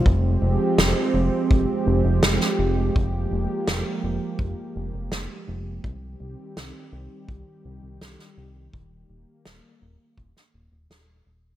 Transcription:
<<
  \new Staff \with { instrumentName = "Analog synth pad" } { \time 4/4 \key f \minor \tempo 4 = 83 << { <f aes g'>1~ | <f aes g'>1 | <ees g g'>1~ | <ees g g'>1 | } \\ { c'1 | bes1 | c'1 | bes1 | } >> }
  \new Staff \with { instrumentName = "Analog synth bass" } { \clef bass \time 4/4 \key f \minor f,,8 f,,16 r16 f,,16 r16 f,,16 r16 f,,16 r16 f,,16 f,,16 f,,16 r16 f,,8 | f,,8 f,,16 r16 f,,16 r16 f,,16 r16 f,,16 r16 f,,16 f,,16 f,,16 r16 f,,8 | c,8 c,16 r16 c,16 r16 c,16 r16 c,16 r16 c,16 c,16 c,16 r16 c,8 | ees,,8 ees,,16 r16 ees,,16 r16 ees,,16 r16 ees,,16 r16 ees,,16 ees,,16 ees,,8 ees,,8 | }
  \new DrumStaff \with { instrumentName = "Drums" } \drummode { \time 4/4 bd4 sn4 bd4 sn16 sn8. | bd4 sn4 bd4 sn4 | bd4 sn4 bd4 sn16 sn8. | bd4 sn4 bd16 sn8. sn4 | }
>>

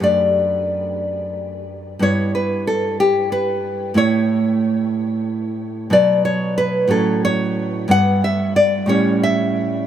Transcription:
\new Staff \with { instrumentName = "Nylon-string guitar" } { \time 6/8 \key d \major \tempo 4. = 61 << { d''2. | cis''8 b'8 a'8 g'8 b'4 | cis''2. | d''8 cis''8 b'8 a'8 cis''4 |
fis''8 e''8 d''8 cis''8 e''4 | } \\ { <fis, a d'>2. | <g, b e'>2. | <a, a e'>2. | <b, fis b>4. <a, fis cis'>4. |
<g, g b>4. <a, g cis'>4. | } >> }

